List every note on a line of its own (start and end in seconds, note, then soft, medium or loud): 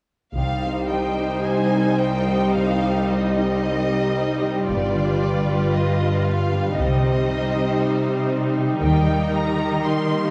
0.36 1.42 C2 soft
0.36 4.65 C2 soft
0.36 2.55 C3 soft
0.36 6.74 G3 soft
0.36 0.63 G3 soft
0.36 4.65 D#4 soft
0.36 4.66 C5 soft
0.36 0.87 F5 medium
0.65 2.82 C4 soft
0.65 0.92 C4 soft
0.92 2.27 G3 soft
0.92 1.19 D#4 soft
0.92 1.47 G5 soft
1.19 1.72 D#4 soft
1.19 1.46 G4 soft
1.46 1.74 D#4 soft
1.46 1.99 C5 soft
1.46 2.01 G#5 soft
1.74 2.01 C4 soft
1.74 3.36 D#4 soft
2.01 2.29 G3 soft
2.01 3.62 C5 soft
2.01 2.56 G5 soft
2.28 3.09 G3 soft
2.28 2.56 C4 soft
2.56 4.74 C3 soft
2.56 2.81 D#4 soft
2.56 3.10 F5 soft
2.82 4.74 C4 soft
2.82 3.10 G4 soft
3.09 4.41 G3 soft
3.09 3.37 D#4 soft
3.09 4.69 D#5 soft
3.36 3.63 C4 soft
3.36 3.89 D#4 soft
3.63 3.90 G3 soft
3.63 4.14 C5 soft
3.89 4.16 C4 soft
3.89 4.74 D#4 soft
4.16 4.43 D#4 soft
4.16 4.73 C5 soft
4.41 5.20 G3 soft
4.41 4.69 G4 soft
4.68 5.71 G1 soft
4.68 6.82 G2 soft
4.68 6.75 G2 soft
4.68 4.93 B3 soft
4.68 6.74 F4 soft
4.68 6.78 B4 soft
4.68 5.73 D5 soft
4.95 6.82 D3 soft
4.95 5.22 D4 soft
5.22 6.51 G3 soft
5.22 5.49 F4 soft
5.48 5.99 F4 soft
5.48 5.76 G4 soft
5.74 6.02 F4 soft
5.74 6.25 B4 soft
5.74 6.27 D#5 soft
6.00 6.29 D4 soft
6.00 6.82 F4 soft
6.26 6.54 B3 soft
6.26 6.82 B4 soft
6.26 6.78 F5 soft
6.52 7.28 G3 soft
6.52 6.79 D4 soft
6.78 7.76 C2 soft
6.78 8.87 C3 soft
6.78 8.79 C3 soft
6.78 10.30 G3 soft
6.78 7.02 G3 soft
6.78 10.30 D#4 soft
6.78 8.83 C5 soft
6.78 8.32 D#5 soft
7.03 8.87 C4 soft
7.03 7.29 C4 soft
7.29 8.56 G3 soft
7.29 7.54 D#4 soft
7.54 8.04 D#4 soft
7.54 7.81 G4 soft
7.80 8.06 D#4 soft
7.80 8.31 C5 soft
8.06 8.32 C4 soft
8.06 9.32 D#4 soft
8.32 8.59 G3 soft
8.32 8.87 C5 soft
8.57 9.07 G3 soft
8.57 8.84 C4 soft
8.83 9.82 D#2 soft
8.83 10.30 D#3 soft
8.83 9.08 G3 soft
8.83 10.30 A#4 soft
8.83 9.31 G5 soft
9.08 10.30 G3 soft
9.08 9.35 A#3 soft
9.34 10.30 D#4 soft
9.34 9.61 D#4 soft
9.34 9.86 A#5 medium
9.59 9.86 G4 soft
9.59 10.11 A#4 soft
9.85 10.12 D#4 soft
9.85 10.30 G4 soft
9.85 10.30 C6 soft
10.10 10.30 A#3 soft
10.10 10.30 A#4 soft